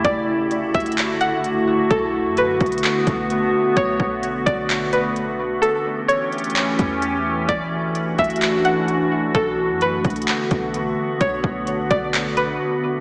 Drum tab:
HH |x-------x---xxxxx---x---x-------|x-------x---xxxxx---x---x-------|x-------x---x---x---x---x-------|x-------x---xxxxx---x---x-------|
CP |----------------x---------------|----------------x---------------|----------------x---------------|----------------x---------------|
BD |o-----------o-------------------|o-----------o-------o-----------|o---o-------o-------------------|--------------------o-----------|

HH |x-------x---xxxxx---x---x-------|x-------x---xxxxx---x---x-------|x-------x---x---x---x-----------|
CP |----------------x---------------|----------------x---------------|----------------x---------------|
BD |o-----------o-------------------|o-----------o-------o-----------|o---o-------o-------------------|